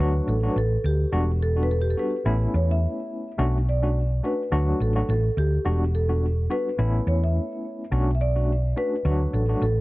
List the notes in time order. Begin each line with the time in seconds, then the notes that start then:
Already playing: B4
0.00 D2 F#3 A3 D4 F#4
0.27 A1 A4
0.43 F#3 A3 D4 F#4
0.51 B4
0.56 A1 A4
0.84 D2 G4
1.12 E1 G3 B3 D4 F#4
1.42 A4
1.56 G3 B3 D4 F#4
1.63 B4
1.71 A4
1.81 G4
1.90 A4
1.97 G3 B3 D4 F#4 B4
2.25 A1 A3 B3 C#4 E4
2.54 E2 C#5
2.71 E5
3.38 B1 A3 C#4 D4 F#4
3.69 D5
3.82 A3 C#4 D4 F#4
4.23 A3 C#4 D4 F#4 B4
4.52 D2 F#3 A3 D4 F#4
4.80 A1 A4
4.96 F#3 A3 D4 F#4
5.09 A1 A4
5.37 D2 G4
5.65 E1 G3 B3 D4 F#4
5.95 A4
6.09 G3 B3 D4 F#4
6.50 G3 B3 D4 F#4 B4
6.78 A1 A3 B3 C#4 E4
7.07 E2 C#5
7.24 E5
7.92 B1 A3 C#4 D4 F#4
8.15 E5
8.21 D5
8.35 A3 C#4 D4 F#4
8.76 A3 C#4 D4 F#4 B4
9.05 D2 F#3 A3 D4 F#4
9.33 A1 A4
9.48 F#3 A3 D4 F#4
9.61 A1 A4